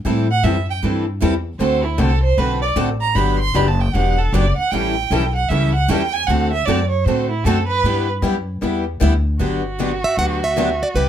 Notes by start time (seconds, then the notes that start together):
0.05 A2 E3 G3 C4 E4 A4
0.31 F#5
0.43 F#2 E3 G3 C4 E4 A4 E5
0.70 G5
0.83 G2 E3 G3 C4 E4 A4
1.22 E2 E3 G3 C4 E4 A4
1.59 D2 D3 A3 C4 F#4 A4 C5
1.84 E4
1.98 C2 D3 A3 C4 F#4 A4
2.23 C5
2.38 B1 D3 A3 C4 F#4 A4 B4
2.61 D5
2.76 A1 D3 A3 C4 F#4 A4
3.01 A#5
3.15 G1 D3 F#3 B3 D4 G4 B5
3.39 C6
3.55 F#1 D3 F#3 B3 D4 G4 B5
3.67 A5
3.80 G5
3.94 E1 D3 F#3 B3 D4 G4 F#5
4.18 A4
4.33 F#1 D3 F#3 B3 D4 G4 D5
4.56 F#5, muted upright bass stroke
4.71 A1 E3 G3 C#4 E4 A4 G5
5.11 B1 E3 G3 C#4 E4 A4
5.35 F#5
5.48 C#2 E3 G3 C#4 E4 A4 E5
5.75 F#5
5.88 E2 E3 G3 C#4 E4 A4 G5
6.13 G#5
6.27 D2 D3 A3 C4 F#4 A4 F#5
6.52 E5
6.65 F#2 D3 A3 C4 F#4 A4 D5
6.89 C#5
7.04 A2 D3 A3 C4 F#4 A4 C5
7.30 E4
7.44 F#2 D3 A3 C4 F#4 A4
7.67 B4
7.83 G2 G3 B3 E4 G4
8.22 F#2 G3 B3 E4 G4
8.61 E2 G3 B3 E4 G4
9.00 D2 G3 B3 E4 G4
9.39 G1 D3 F#3 B3 D4 F#4 G4
9.79 D3 F#3 B3 D4 G4
10.04 E5
10.17 D2 D3 F#3 B3 D4 G4 F#5
10.44 E5
10.56 D3 F#3 B3 D4 G4
10.83 D5
10.94 C2 C3 G3 B3 E4 G4 B4